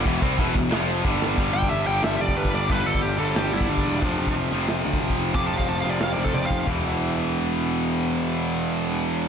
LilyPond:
<<
  \new Staff \with { instrumentName = "Lead electric guitar" } { \time 4/4 \key e \phrygian \tempo 4 = 181 r1 | r8 g''8 e''8 g''8 e''8 d''8 b'8 d''8 | b'8 a'8 g'8 a'8 g'8 e'8 d'4~ | d'4 r2. |
\tuplet 3/2 { d'''8 a''8 f''8 a''8 f''8 d''8 f''8 d''8 a'8 d''8 f''4 } | r1 | r1 | }
  \new Staff \with { instrumentName = "Distorted electric guitar" } { \clef bass \time 4/4 \key e \phrygian <e, b, e>8 <c g c'>8 <e, b, e>8 <e, b,>8 <f, c f>4 <g, d g>4 | <g, d g>4. <g, d g>2~ <g, d g>8 | <g, d g>4. <g, d g>2~ <g, d g>8 | <f, c f>4. <f, c f>2~ <f, c f>8 |
<f, c f>4. <f, c f>2~ <f, c f>8 | <e, b, e>1~ | <e, b, e>1 | }
  \new Staff \with { instrumentName = "Picked electric bass" } { \clef bass \time 4/4 \key e \phrygian e,,8 c,8 e,,8 e,,8 f,,4 g,,4 | g,,8 g,,8 g,,8 g,,8 g,,8 f,,8 g,,8 g,,8 | g,,8 g,,8 g,,8 g,,8 g,,8 g,,8 g,,8 e,,8 | f,,8 f,,8 f,,8 f,,8 f,,8 d,8 f,,8 f,,8 |
f,,8 f,,8 f,,8 f,,8 f,,8 f,,8 f,,8 f,,8 | e,,1~ | e,,1 | }
  \new DrumStaff \with { instrumentName = "Drums" } \drummode { \time 4/4 <cymc bd>8 bd8 <cymc bd>8 bd8 <cymc sn>4 <cymc bd>8 sn8 | <hho bd>8. bd16 hho4 <hho sn>8. bd16 hho16 bd8. | <hho bd>8. bd16 hho4 <hho sn>8. bd16 hho16 bd8. | <hho bd>8. bd16 hho4 <hho sn>8. bd16 hho16 bd8. |
<hho bd>8. bd16 hho4 <hho sn>8. bd16 tommh8 bd8 | <cymc bd tomfh>4 r4 r4 r4 | r4 r4 r4 r4 | }
>>